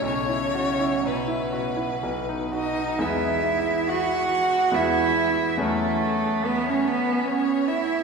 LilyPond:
<<
  \new Staff \with { instrumentName = "Violin" } { \time 3/4 \key e \major \tempo 4 = 70 cis''4 b'4. dis''8 | e''4 fis''4 e''4 | a'4 b'16 cis''16 b'8 cis''8 e''8 | }
  \new Staff \with { instrumentName = "Grand piano" } { \time 3/4 \key e \major b,,16 e'16 fis'16 e'16 fis16 e'16 fis'16 e'16 b,,16 dis'16 fis'16 dis'16 | <e, gis b e'>2 <e, gis b e'>4 | <e, fis cis' fis'>2. | }
  \new Staff \with { instrumentName = "Cello" } { \time 3/4 \key e \major cis4 b,4. dis'8 | e'4 fis'4 e'4 | a4 b16 cis'16 b8 cis'8 e'8 | }
>>